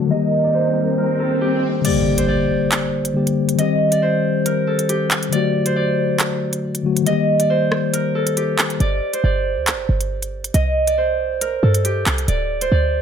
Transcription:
Already playing: D3 F#3 A3 F#4 G4 C5 D5
0.08 D#3 G3 D#4 A#4 D#5, swell
0.12 A#3 G4
0.44 D5
0.54 C5
0.98 A#4
1.19 A4
1.41 G4
1.81 D3 G3 D5, closed hi-hat, crash, impact
1.86 A#3 G4
2.18 C5, closed hi-hat
2.28 D5
2.72 clap, closed hi-hat
3.05 closed hi-hat
3.14 D3 G3 A#3 G4
3.27 closed hi-hat
3.49 closed hi-hat
3.55 D#3 G3 D#5, closed hi-hat
3.60 C4 G4
3.92 D5, closed hi-hat
4.02 C5
4.46 A#4, closed hi-hat
4.67 A4
4.79 closed hi-hat
4.89 G4, closed hi-hat
5.11 clap, closed hi-hat
5.23 closed hi-hat
5.29 D3 F#3 D5, closed hi-hat
5.34 A3 F#4
5.66 C5, closed hi-hat
5.76 D5
6.19 clap, closed hi-hat
6.53 closed hi-hat
6.75 closed hi-hat
6.83 D3 F#3 A3 F#4
6.97 closed hi-hat
7.03 D#3 G3 D#5, closed hi-hat
7.08 A#3 G4
7.40 D5, closed hi-hat
7.50 C5
7.72 cross-stick
7.93 A#4, closed hi-hat
8.15 A4
8.27 closed hi-hat
8.37 G4, closed hi-hat
8.59 cross-stick, clap, closed hi-hat
8.70 closed hi-hat
8.80 G1 D5, closed hi-hat
9.13 C5, closed hi-hat
9.24 G1 D5
9.57 D2
9.67 clap, closed hi-hat
9.73 G1
9.89 G1
10.01 closed hi-hat
10.22 closed hi-hat
10.44 closed hi-hat
10.54 C2 D#5, closed hi-hat
10.87 D5, closed hi-hat
10.98 C5
11.41 A#4, closed hi-hat
11.63 G2 A4
11.74 closed hi-hat
11.85 G4, closed hi-hat
12.06 C2, clap, closed hi-hat
12.18 closed hi-hat
12.28 D1 D5, closed hi-hat
12.61 C5, closed hi-hat
12.72 D2 D5

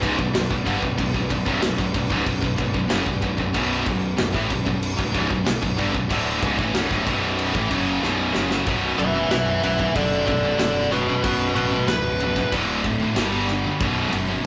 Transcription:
Already playing: F#3 B3 B4 D5
0.01 C#1 C#2 G#2, kick, crash
0.19 B0 B1 F#2, kick
0.35 B0 B1 F#2, snare, crash
0.50 B0 B1 F#2, kick
0.66 G1 G2 D3, kick, crash
0.82 B0 B1 F#2, kick
0.98 B0 B1 F#2, kick, crash
1.14 B0 B1 F#2, kick
1.30 B0 B1 F#2, kick, crash
1.45 B0 B1 F#2, kick
1.62 B0 B1 F#2, snare, crash
1.78 B0 B1 F#2, kick, snare
1.94 B0 B1 F#2, kick, crash
2.10 C#1 C#2 G#2, kick
2.25 B0 B1 F#2, kick, crash
2.41 B0 B1 F#2, kick
2.57 B0 B1 F#2, kick, crash
2.74 B0 B1 F#2, kick
2.89 F#1 F#2 C#3, snare, crash
3.05 B0 B1 F#2, kick
3.21 B0 B1 F#2, kick, crash
3.37 B0 B1 F#2, kick
3.53 B0 B1 F#2 B2, kick, crash
3.86 B0 B1 F#2, kick, crash
4.17 B0 B1 F#2, snare, crash
4.32 A1 A2 E3, kick, snare
4.49 B0 B1 F#2, kick, crash
4.65 B0 B1 F#2, kick
4.83 crash
4.97 B0 B1 F#2, kick
5.12 C#1 C#2 G#2, kick, crash
5.29 B0 B1 F#2, kick
5.45 B0 B1 F#2, snare, crash
5.62 B0 B1 F#2, kick
5.76 G1 G2 D3, kick, crash
5.93 B0 B1 F#2, kick
6.09 D1 D2 A2 D3, kick, crash
6.42 C#1 C#2 G#2, kick, crash
6.58 A1 A2 E3, kick
6.73 B0 B1 F#2, snare, crash
6.90 D1 D2 A2, kick, snare
7.06 B0 B1 F#2 B2, kick, crash
7.39 crash
7.54 A1 A2 E3, kick
7.70 F#1 F#2 C#3 F#3, kick, crash
8.02 B0 B1 F#2 B2, snare
8.35 F#1 F#2 C#3 F#3, snare
8.51 snare
8.66 B0 B1 F#2 B2, kick, crash
8.97 F#1 B1 F#2 B4 E5, crash
9.14 B1 F#2
9.31 B0 B1 F#2 B4 E5, snare, crash
9.63 B0 B1 F#2 B4 E5, crash
9.79 B1 F#2, kick
9.95 F#1 B1 F#2 A4 D5, kick, crash
10.26 B0 B1 F#2 A4 D5, kick, crash
10.43 B1 F#2
10.58 E1 B1 F#2 A4 D5, snare, crash
10.91 B1 F#2 B2 F#4 B4, snare, crash
11.08 B1 F#2
11.23 B0 B1 F#2 B2 F#4 B4, kick, crash
11.55 A1 B1 F#2 F#4 B4, crash
11.72 B1 F#2
11.87 C#1 B1 F#2 B4, snare, crash
12.20 B1 F#2, crash
12.36 B1 F#2, kick, snare
12.52 D1 D2 A2 D3, kick, crash
12.84 D2 A2, kick, crash
13.00 D2 A2
13.15 G1 G2 D3 G3, snare, crash
13.47 G2 D3, snare, crash
13.64 G2 D3
13.80 B0 B1 F#2 B2, kick, crash
14.12 F#1 B1 F#2, crash
14.28 B1 F#2

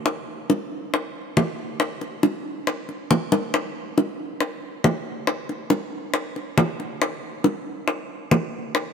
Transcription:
0.06 high bongo
0.50 high bongo
0.94 high bongo
1.37 high bongo, low bongo
1.80 high bongo
2.01 high bongo
2.23 high bongo
2.67 high bongo
2.89 high bongo
3.11 high bongo, low bongo
3.32 high bongo
3.54 high bongo
3.98 high bongo
4.41 high bongo
4.84 high bongo, low bongo
5.27 high bongo
5.49 high bongo
5.70 high bongo
6.14 high bongo
6.36 high bongo
6.58 high bongo, low bongo
6.80 high bongo
7.02 high bongo
7.44 high bongo
7.88 high bongo
8.31 high bongo, low bongo
8.75 high bongo

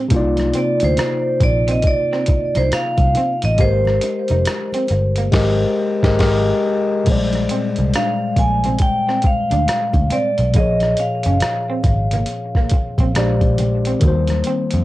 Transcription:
Already playing: C5
0.09 C2 C3 A#3 D4, kick, closed hi-hat, muted conga, low conga
0.15 F4 D5
0.19 D#4
0.37 cross-stick, closed hi-hat, high conga
0.54 C4 D5, closed hi-hat, muted conga
0.80 D2, closed hi-hat, high conga
0.84 C5
0.97 D#4, cross-stick, closed hi-hat, muted conga
1.40 A#1 D5, muted clean electric guitar stroke, kick, closed hi-hat
1.68 C4 D#5, closed hi-hat
1.82 kick, closed hi-hat
1.87 D5
2.13 C4, cross-stick
2.26 muted picked electric bass stroke, muted clean electric guitar stroke, kick, closed hi-hat
2.55 C2 D#4 C5, closed hi-hat, high conga
2.71 F5, muted picked electric bass stroke, cross-stick, closed hi-hat, muted conga
2.97 C2, kick, closed hi-hat, high conga
3.15 C4, closed hi-hat, muted conga, high conga, low conga
3.42 A1 D#5, closed hi-hat
3.56 G#1 G#3 G4, kick, closed hi-hat, muted conga, low conga
3.60 A#3 A#4 C5
3.65 B4
3.71 C5
3.85 cross-stick, high conga
4.01 muted clean electric guitar stroke, closed hi-hat, muted conga
4.28 F1 D#4, closed hi-hat, high conga
4.45 cross-stick, closed hi-hat, muted conga
4.72 C4, closed hi-hat, high conga
4.87 G1, muted clean electric guitar stroke, closed hi-hat, muted conga
5.16 A#3, closed hi-hat
5.32 G#1 G#3 G4 A#4, kick, snare, crash
5.36 D#5
6.03 G#1 G#3 G4 A#4, kick, snare
6.07 D#5
6.19 G#1 G#3 G4 A#4, kick, snare, crash
6.23 D#5
7.04 A#1 A#2 G#3, kick, closed hi-hat, crash, low conga
7.08 G3 C5 D5
7.33 cross-stick, closed hi-hat, high conga
7.49 C4, closed hi-hat, muted conga
7.76 C2, closed hi-hat, high conga
7.94 D4 F5, cross-stick, closed hi-hat, muted conga
8.36 A#1 G#5, muted clean electric guitar stroke, kick, closed hi-hat
8.64 C4, closed hi-hat, low conga
8.79 G5, kick, closed hi-hat, muted conga
9.09 C4, cross-stick
9.22 muted picked electric bass stroke, muted clean electric guitar stroke, kick, closed hi-hat, muted conga
9.27 F5
9.51 D2 D4, closed hi-hat, high conga
9.68 cross-stick, closed hi-hat
9.93 D2, kick, closed hi-hat, high conga
10.10 C4 D5, closed hi-hat, high conga, low conga
10.38 B1, closed hi-hat
10.52 A#1 A2 F3, kick, closed hi-hat, muted conga, low conga
10.56 A#2 A#3 G#4 D#5
10.60 C#5
10.80 cross-stick, closed hi-hat, high conga
10.97 F5, muted clean electric guitar stroke, closed hi-hat
11.23 F#1 C#4, closed hi-hat, high conga
11.40 cross-stick, closed hi-hat, muted conga
11.70 C4
11.83 G#1, muted clean electric guitar stroke, kick, closed hi-hat, muted conga
12.11 A#3, closed hi-hat, low conga
12.26 closed hi-hat
12.55 A#3, kick, cross-stick
12.70 muted picked electric bass stroke, kick, closed hi-hat
12.74 muted clean electric guitar stroke
12.98 A#1 C4, kick, closed hi-hat, high conga
13.15 A#1 A#2 G#3 D4 G4 C5 D5, cross-stick, closed hi-hat, muted conga
13.41 kick, closed hi-hat, high conga
13.58 muted clean electric guitar stroke, closed hi-hat, muted conga, high conga, low conga
13.85 C4, closed hi-hat
13.99 D#2 D#3 A#3, kick, closed hi-hat
14.04 F#4, muted conga, low conga
14.08 G3 C5
14.28 cross-stick, closed hi-hat, high conga
14.44 C4, closed hi-hat
14.71 F2, closed hi-hat, high conga

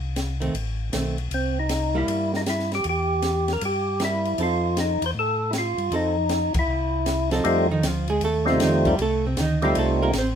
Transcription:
Already playing: C2
0.16 snare, hi-hat pedal, ride
0.40 D#3 A3 C4, ride
0.54 A1, ride
0.92 B1 D#3 A3 C4, snare, hi-hat pedal, ride
1.18 ride
1.31 C2 C4, ride
1.59 D#4
1.69 snare, hi-hat pedal, ride
1.95 G3 A#3 E4
2.08 G2, ride
2.34 D#4, snare
2.46 E4, snare, hi-hat pedal, ride
2.59 snare
2.72 G4, snare, ride
2.84 E2, ride
2.89 G4
3.22 snare, hi-hat pedal, ride
3.48 snare, ride
3.53 A#4
3.61 G2 G4, ride
4.00 G3 A#3 E4, snare, hi-hat pedal, ride
4.05 E4
4.25 ride
4.38 F2 F3 C4 D#4 A4, ride
4.43 F4
4.77 D#4, snare, hi-hat pedal, ride
5.02 E2, ride
5.06 C5
5.14 A2
5.19 A4
5.51 E4, snare, hi-hat pedal, ride
5.58 F4
5.78 G2, ride
5.91 F2 F3 C4 D#4 A4, ride
5.96 D#4
6.29 snare, hi-hat pedal, ride
6.54 F2, kick, ride
6.59 E4
6.68 C2
7.06 snare, hi-hat pedal, ride
7.31 F3 C4 D#4 A4, snare, ride
7.44 F2 G3 A3 C4 D#4 F4, ride
7.71 D#3 D#4
7.83 D2 F3, snare, hi-hat pedal, ride
7.87 F4
8.08 G#3 G#4, ride
8.21 D#2 A3 A4, ride
8.45 G3 A3 C4 D#4 F4, snare
8.49 C3
8.60 F2 D#3 D#4, snare, hi-hat pedal, ride
8.85 G3 G4, kick, ride
8.98 C2 A3 A4, ride
9.26 C3 C4
9.37 D2 D#3 D#4, snare, hi-hat pedal, ride
9.62 G3 A3 C4 D#4 F4 G4, ride
9.75 C2 A3 A4, ride
10.03 A#3 A#4
10.13 A1, snare, hi-hat pedal, ride
10.18 C4 C5

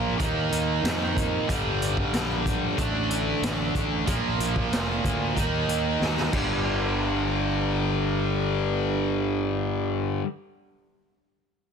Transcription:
Already playing: A#1 A#2 F3 A#3
0.17 D#2 D#3 A#3 D#4, kick, closed hi-hat
0.51 D#2, closed hi-hat
0.83 F2, snare, closed hi-hat
1.17 kick, closed hi-hat
1.47 G1 G2 D3 G3, kick, closed hi-hat
1.82 closed hi-hat
1.97 kick
2.12 A#1, snare, closed hi-hat
2.46 kick, closed hi-hat
2.77 A1 D3 A3 D4, kick, closed hi-hat
3.11 closed hi-hat
3.42 A1, snare, closed hi-hat
3.75 A1, kick, closed hi-hat
4.06 A#1 A#2 F3 A#3, kick, closed hi-hat
4.39 A#1, closed hi-hat
4.56 kick
4.72 F1, snare, closed hi-hat
5.04 D2, kick, closed hi-hat
5.35 D#2 D#3 A#3 D#4, kick, closed hi-hat
5.68 D#2, closed hi-hat
6.00 D#2, snare
6.17 snare
6.31 G1 G2 D3, kick, crash
6.35 G3

